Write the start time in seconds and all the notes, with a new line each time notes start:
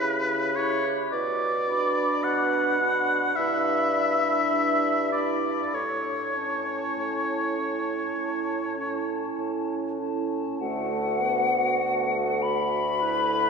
Already playing: E4 G4 B4 B5
0.01 C#3
0.56 E4 G4 C#5 B5
1.12 B2 D5
1.68 D4 F#4 B5
2.24 B2 F#5
2.80 D4 F#4 B5
3.36 G2 D4 E4 E5 B5
3.94 D4 E4 B5
4.52 G2
5.12 D4 E4 D5 B5
5.74 A2 C#5
6.36 C#4 E4 A5
6.98 A2
7.58 C#4 E4 A5
8.18 A2
8.77 C#4 E4 A5
9.39 A2
9.99 C#4 E4 A5
10.60 D2 A3 F#4 F#5
11.21 B3
11.82 A3
12.42 B5
13.01 E4 B4